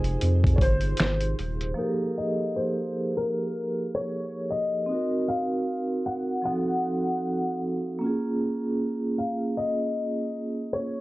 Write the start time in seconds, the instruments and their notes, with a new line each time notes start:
Already playing: sub bass F1, string machine C3 F3 G#3 D#4 F4 C5, vibraphone D#4 F4 G#4 C5, upright piano G#5
0.04 closed hi-hat
0.21 sub bass F2, closed hi-hat
0.44 kick, closed hi-hat
0.56 sub bass G1, upright piano C#5, kick
0.61 upright piano C5, closed hi-hat
0.81 closed hi-hat
0.97 sub bass G#1, finger snap, snare, closed hi-hat
1.20 closed hi-hat
1.39 sub bass D#1, closed hi-hat
1.61 closed hi-hat
1.74 vibraphone F3 A#3 D#4
1.78 vibraphone G4 G#4 A4, upright piano A#4
1.89 vibraphone A#4
2.18 upright piano D#5
2.56 upright piano C5
3.17 upright piano A#4
3.95 upright piano C#5
4.51 upright piano D#5
4.86 vibraphone C4 D#4
4.92 vibraphone F#4 A#4
5.28 upright piano F5
6.06 upright piano F#5
6.42 vibraphone F3 C4 D#4, upright piano F#5
6.48 vibraphone F#4 A4
7.99 vibraphone A#3 C#4
8.04 vibraphone F4 G#4
9.18 upright piano F5
9.57 upright piano D#5
10.73 upright piano C#5